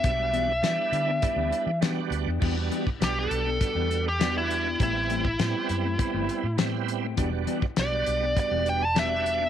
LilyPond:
<<
  \new Staff \with { instrumentName = "Lead electric guitar" } { \time 4/4 \key e \minor \tempo 4 = 101 e''2. r4 | r4 g'16 a'4. g'8 e'8. | e'2. r4 | r4 d''4 d''8 g''16 a''16 e''4 | }
  \new Staff \with { instrumentName = "Clean electric guitar" } { \time 4/4 \key e \minor r8 <e b d' g'>16 r4 <b d' g'>16 r16 <e b d' g'>16 r8 <e b d' g'>16 r8 <b d' g'>16 | <e b d' g'>16 r16 <e b d' g'>16 r4 <b d' g'>16 r16 <e b d' g'>16 r8 <e b d' g'>16 r8 <b d' g'>16 | <e a c' g'>16 r16 <e a c' g'>16 r4 <a c' g'>16 r16 <e a c' g'>16 r8 <e a c' g'>16 r8 <a c' g'>16 | <e b d' g'>16 r16 <e b d' g'>16 r4 <b d' g'>16 r16 <e b d' g'>16 r8 <e b d' g'>16 r8 <b d' g'>16 | }
  \new Staff \with { instrumentName = "Tonewheel organ" } { \time 4/4 \key e \minor <g b d' fis'>4 <g b d' e'>4 <g b d' e'>4 <g b d' fis'>4 | <g b d' fis'>4 <g b d' fis'>4 <g b d' fis'>4 <g b d' fis'>4 | <g b c' e'>4 <g b c' e'>4 <g b c' e'>4 <g b c' e'>4 | <g b d' fis'>4 <g b d' fis'>4 <g b d' fis'>4 <g b d' fis'>4 | }
  \new Staff \with { instrumentName = "Fingered electric bass" } { \clef bass \time 4/4 \key e \minor b,,4 e16 r16 d8 r16 d,16 r16 e8. d,16 e,16 | e,8 r8 b,,8 b,,8 r16 e,4.~ e,16 | a,,4 a,16 r16 fis,8 r16 g,,16 r16 a,4~ a,16 | e,,8 r8 b,,8 b,,8 r16 e,,4.~ e,,16 | }
  \new DrumStaff \with { instrumentName = "Drums" } \drummode { \time 4/4 <hh bd>8 hh8 <hh sn>8 hh8 <hh bd>8 hh8 <hh sn>8 hh8 | <cymc bd>8 hh16 bd16 <hh sn>8 hh8 <hh bd>8 hh8 <hh sn>8 hh8 | <hh bd>8 hh16 bd16 <hh sn>8 hh8 <hh bd>8 hh8 <hh sn>8 hh8 | <hh bd>8 hh16 bd16 <hh sn>8 hh8 <hh bd>8 hh8 <hh sn>8 hh8 | }
>>